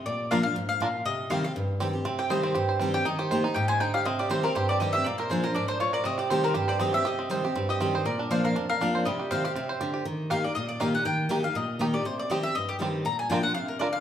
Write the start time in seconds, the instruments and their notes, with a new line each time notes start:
0.06 steel-string acoustic guitar A#2, mandolin D5
0.31 steel-string acoustic guitar F3 A#3 D4 F4, five-string banjo D4 F4 A#4, mandolin F5
0.43 steel-string acoustic guitar D4 F4, mandolin F5
0.56 steel-string acoustic guitar G#2
0.69 mandolin F5
0.80 steel-string acoustic guitar A#2, five-string banjo D4 F4 A#4
1.05 steel-string acoustic guitar C3, mandolin D#5
1.30 steel-string acoustic guitar D#3 G3 C4 G4, five-string banjo C4 G4, mandolin F5
1.44 steel-string acoustic guitar C4 G4, mandolin F5
1.56 steel-string acoustic guitar G2
1.80 steel-string acoustic guitar D#3 G3 C4 G4, five-string banjo C4 G4
1.93 steel-string acoustic guitar C4 G4
2.05 steel-string acoustic guitar C3, five-string banjo C4
2.19 five-string banjo G4, mandolin G5
2.30 steel-string acoustic guitar D#3 G3 C4 G4, five-string banjo C5, mandolin D#5
2.43 five-string banjo C4, mandolin C5
2.55 steel-string acoustic guitar G2, five-string banjo G4
2.69 five-string banjo C5
2.80 steel-string acoustic guitar D#3 G3 C4 G4, five-string banjo C4
2.94 steel-string acoustic guitar C4 G4, five-string banjo G4, mandolin G5
3.05 steel-string acoustic guitar D#3, five-string banjo D#4, mandolin D#5
3.19 five-string banjo G4, mandolin C5
3.31 steel-string acoustic guitar D#3 A#3 D#4 G4, five-string banjo C5
3.44 five-string banjo D#4, steel-string acoustic guitar D#4 G4
3.54 steel-string acoustic guitar G#2, five-string banjo G4, mandolin G5
3.68 five-string banjo C5, mandolin G#5
3.80 steel-string acoustic guitar D3, five-string banjo D#4, mandolin G5
3.94 five-string banjo G4, mandolin F5
4.05 steel-string acoustic guitar C3, five-string banjo C4, mandolin D#5
4.19 five-string banjo G4, mandolin D5
4.29 steel-string acoustic guitar D#3 G3 C4 G4, mandolin C5, five-string banjo C5
4.43 steel-string acoustic guitar C4 G4, five-string banjo C4, mandolin A#4
4.55 steel-string acoustic guitar G2, five-string banjo G4, mandolin C5
4.69 five-string banjo C4, mandolin D5
4.80 steel-string acoustic guitar D#3 G3 C4 G4, five-string banjo G4, mandolin D#5
4.93 five-string banjo G4, steel-string acoustic guitar G4, mandolin E5
4.97 steel-string acoustic guitar C4
5.04 steel-string acoustic guitar A#2, five-string banjo A#3, mandolin D5
5.18 five-string banjo A#4, mandolin C5
5.30 steel-string acoustic guitar F3 A#3 D4 F4, mandolin G#4, five-string banjo C5
5.44 steel-string acoustic guitar D4 F4, five-string banjo A#4, mandolin C5
5.54 steel-string acoustic guitar G#2, five-string banjo D4, mandolin D5
5.68 mandolin C5, five-string banjo C5
5.80 steel-string acoustic guitar A#2, five-string banjo F4, mandolin C#5
5.93 five-string banjo A#4, mandolin D5
6.04 steel-string acoustic guitar C3, five-string banjo C4, mandolin D#5
6.18 five-string banjo G4, mandolin D5
6.30 steel-string acoustic guitar D#3 G3 C4 G4, five-string banjo C5, mandolin C5
6.44 five-string banjo C4, mandolin A#4
6.54 steel-string acoustic guitar G2, five-string banjo G4, mandolin C5
6.68 five-string banjo C5, mandolin D5
6.79 steel-string acoustic guitar D#3 G3 C4 G4, five-string banjo C4, mandolin D#5
6.93 steel-string acoustic guitar C4 G4, five-string banjo G4, mandolin E5
7.05 steel-string acoustic guitar C3, five-string banjo G4, mandolin D#5
7.19 five-string banjo C4
7.29 steel-string acoustic guitar D#3 G3 C4 G4, five-string banjo C5
7.44 steel-string acoustic guitar C4 G4, five-string banjo G4
7.55 steel-string acoustic guitar G2, five-string banjo C4
7.69 five-string banjo G4, mandolin D#5
7.80 steel-string acoustic guitar D#3 G3 C4 G4, five-string banjo C4
7.95 five-string banjo C5
8.05 steel-string acoustic guitar A#2, five-string banjo A#4, mandolin D5
8.19 five-string banjo D4
8.31 steel-string acoustic guitar F3 A#3 D4 F4, five-string banjo C5, mandolin F5
8.44 five-string banjo A#4, mandolin F5
8.56 steel-string acoustic guitar F2, five-string banjo D4
8.69 five-string banjo A#4, mandolin F5
8.81 steel-string acoustic guitar F3 A#3 D4 F4, five-string banjo D4
8.95 five-string banjo C5
9.05 steel-string acoustic guitar C3, five-string banjo G3, mandolin D#5
9.19 five-string banjo G4
9.31 steel-string acoustic guitar D#3 G3 C4 G4, five-string banjo C5, mandolin F5
9.44 five-string banjo G4, steel-string acoustic guitar G4, mandolin F5
9.56 steel-string acoustic guitar C3, five-string banjo C4
9.69 five-string banjo C5
9.81 steel-string acoustic guitar D3, five-string banjo G4
9.94 five-string banjo G4
10.05 steel-string acoustic guitar D#3
10.30 steel-string acoustic guitar D#3 A#3 D#4 G4, five-string banjo D#4 G4, mandolin F5
10.44 steel-string acoustic guitar D#4 G4, mandolin D5
10.55 steel-string acoustic guitar A#2, mandolin D#5
10.69 mandolin D5
10.80 steel-string acoustic guitar D#3 A#3 D#4 G4, five-string banjo D#4 G4, mandolin F5
10.94 steel-string acoustic guitar D#4 G4, mandolin F#5
11.05 steel-string acoustic guitar D#3, mandolin G5
11.29 steel-string acoustic guitar D#3 A#3 D#4 G4, five-string banjo D#4 G4
11.43 steel-string acoustic guitar D#4 G4, mandolin F5
11.55 steel-string acoustic guitar A#2, mandolin D#5
11.79 steel-string acoustic guitar D#3 A#3 D#4 G4, five-string banjo D#4 G4
11.93 steel-string acoustic guitar D#4 G4, mandolin D5
12.05 steel-string acoustic guitar C3, mandolin C5
12.19 mandolin D5
12.30 steel-string acoustic guitar D#3 G3 C4 G4, five-string banjo C4 G4, mandolin D#5
12.43 steel-string acoustic guitar C4 G4, mandolin E5
12.55 steel-string acoustic guitar G2, mandolin D#5
12.69 mandolin G4
12.79 steel-string acoustic guitar D#3 G3 C4 G4, five-string banjo C4 G4
13.05 steel-string acoustic guitar A#2, mandolin A#5
13.19 mandolin G#5
13.29 steel-string acoustic guitar F3 A#3 D4 F4, five-string banjo D4 F4 A#4, mandolin G5
13.43 steel-string acoustic guitar D4 F4, mandolin F#5
13.54 steel-string acoustic guitar C3, mandolin F5
13.68 mandolin A#4
13.79 steel-string acoustic guitar D3, five-string banjo D4 F4 A#4, mandolin D5
13.93 mandolin F5